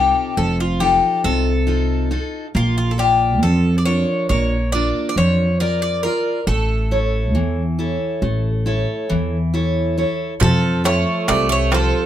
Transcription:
Already playing: upright bass C2, steel-string acoustic guitar C3 D#4 F4 A4, bouzouki G4
0.37 upright bass F1, steel-string acoustic guitar F3, bouzouki A4
0.60 bouzouki F4
0.80 steel-string acoustic guitar D#4 F4 A4, bouzouki G4
1.24 upright bass C2, steel-string acoustic guitar C3, bouzouki A4
1.67 steel-string acoustic guitar D#4 F4 A4
2.11 steel-string acoustic guitar D#4 F4 A4
2.55 upright bass A#1, steel-string acoustic guitar A#3, bouzouki F4
2.78 bouzouki F4
2.91 bouzouki A4
2.98 steel-string acoustic guitar F4 D5, bouzouki G4
3.42 upright bass F2, steel-string acoustic guitar F3, bouzouki A4
3.78 bouzouki D5
3.85 steel-string acoustic guitar D4 F4 A#4, bouzouki C#5
4.29 upright bass A#1, steel-string acoustic guitar A#3, bouzouki C#5
4.72 steel-string acoustic guitar D4 F4 A#4, bouzouki D5
5.09 bouzouki D5
5.16 upright bass F2, steel-string acoustic guitar F3, bouzouki C#5
5.60 steel-string acoustic guitar F4 A#4 D5, bouzouki A#4
5.82 bouzouki D5
6.03 steel-string acoustic guitar F4 A#4 D5, bouzouki A#4
6.47 upright bass A1, steel-string acoustic guitar A3, bouzouki A4
6.91 steel-string acoustic guitar E4 A4 C#5
7.34 upright bass E2, steel-string acoustic guitar E3
7.79 steel-string acoustic guitar E4 A4 C#5
8.22 upright bass A1, steel-string acoustic guitar A3
8.66 steel-string acoustic guitar E4 A4 C#5
9.10 upright bass E2, steel-string acoustic guitar E3
9.54 steel-string acoustic guitar E4 A4 C#5
9.98 steel-string acoustic guitar E4 A4 C#5
10.40 upright bass F2, bouzouki F3 A4, steel-string acoustic guitar F3, darbuka dum
10.84 bouzouki A3 C#5, steel-string acoustic guitar F4 A4, darbuka tek
11.28 upright bass C2, steel-string acoustic guitar C3, bouzouki A3 D5, darbuka tek
11.49 bouzouki A3 C#5, darbuka tek
11.71 bouzouki F3 A4, steel-string acoustic guitar F4 C5, darbuka tek

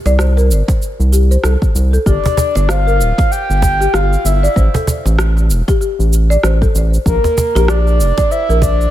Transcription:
0.06 analog synth bass C2, marimba D5, cajon slap, shaker
0.19 marimba C5, cross-stick, shaker
0.37 marimba A#4, cajon slap, shaker
0.50 analog synth bass G1, shaker
0.68 kick, cajon slap, shaker
0.82 shaker
1.00 analog synth bass C2, shaker
1.13 marimba G4, shaker
1.31 marimba C5, shaker
1.44 analog synth bass C2, marimba A4, cross-stick, shaker
1.62 kick, shaker
1.75 analog synth bass C2, shaker
1.93 marimba A4, shaker
2.06 analog synth bass G1, marimba G4, soft synth lead D5, kick, shaker
2.24 cajon bass, cajon slap, shaker
2.37 cajon bass, shaker
2.55 analog synth bass G1, marimba D5, cajon slap, shaker
2.69 marimba C5, soft synth lead F5, cross-stick, shaker
2.87 marimba A#4, shaker
3.00 analog synth bass D1, shaker
3.18 kick, cajon slap, shaker
3.31 soft synth lead G5, shaker
3.50 analog synth bass G1, shaker
3.62 cajon bass, kick, shaker
3.81 marimba G4, shaker
3.93 analog synth bass G1, marimba G4, soft synth lead F5, cross-stick, shaker
4.13 shaker
4.25 analog synth bass G1, soft synth lead E5, shaker
4.43 marimba D5, shaker
4.56 analog synth bass A1, marimba C5, kick, shaker
4.74 marimba A4, cajon bass, cajon slap, shaker
4.87 cajon bass, shaker
5.05 analog synth bass A1, cajon slap, shaker
5.19 cross-stick, shaker
5.37 cajon slap, shaker
5.50 analog synth bass E1, shaker
5.68 marimba G4, kick, cajon slap, shaker
5.81 marimba G4, shaker
5.99 analog synth bass A1, shaker
6.13 shaker
6.30 marimba D5, shaker
6.43 analog synth bass A1, marimba C5, cross-stick, shaker
6.62 marimba A4, kick, shaker
6.75 analog synth bass A1, shaker
6.94 shaker
7.06 analog synth bass A#1, soft synth lead A#4, kick, shaker
7.24 cajon bass, cajon slap, shaker
7.38 cajon bass, shaker
7.55 analog synth bass A#1, marimba G4, cajon slap, shaker
7.68 marimba G4, soft synth lead D5, cross-stick, shaker
7.87 shaker
8.00 analog synth bass F1, shaker
8.18 marimba D5, kick, cajon slap, shaker
8.31 marimba C5, soft synth lead E5, shaker
8.49 analog synth bass A#1, marimba A#4, shaker
8.62 soft synth lead D5, cajon bass, kick, shaker
8.81 shaker

